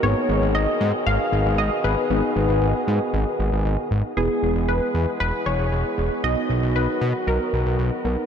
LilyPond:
<<
  \new Staff \with { instrumentName = "Analog polysynth" } { \time 4/4 \key gis \minor \tempo 4 = 116 cis''4 dis''4 eis''4 dis''8 b'8~ | b'2. r4 | \key e \lydian gis'4 b'4 b'8 cis''4 r8 | dis''4 b'4 ais'4. r8 | }
  \new Staff \with { instrumentName = "FM electric piano" } { \time 4/4 \key gis \minor <b dis' gis' b'>1 | <b dis' gis' b'>1 | \key e \lydian <b e' gis' b'>1 | <b dis' fis' dis''>2.~ <b dis' fis' dis''>8 <b dis' fis' ais'>8 | }
  \new Staff \with { instrumentName = "French horn section" } { \clef bass \time 4/4 \key gis \minor << { <b, dis gis'>1~ | <b, dis gis'>1 | \key e \lydian <e gis gis'>1 | <dis fis fis'>1 | } \\ { b1~ | b1 | b1~ | b1 | } >> }
  \new Staff \with { instrumentName = "Analog synth bass" } { \clef bass \time 4/4 \key gis \minor gis,,16 r16 gis,,16 gis,,16 gis,,16 r16 gis,16 r16 gis,,16 r16 gis,,16 gis,,16 gis,,16 r16 gis,,16 r16 | gis,,16 r16 gis,,16 gis,,16 gis,,16 r16 gis,16 r16 gis,,16 r16 gis,,16 gis,,16 gis,,16 r16 gis,,16 r16 | \key e \lydian e,,16 r16 e,,16 e,,16 e,,16 r16 e,16 r16 e,,16 r16 e,,16 e,,16 e,,16 r16 e,,16 r16 | b,,16 r16 b,,16 b,,16 b,,16 r16 b,16 r16 b,,16 r16 b,,16 b,,16 b,,16 r16 b,,16 r16 | }
>>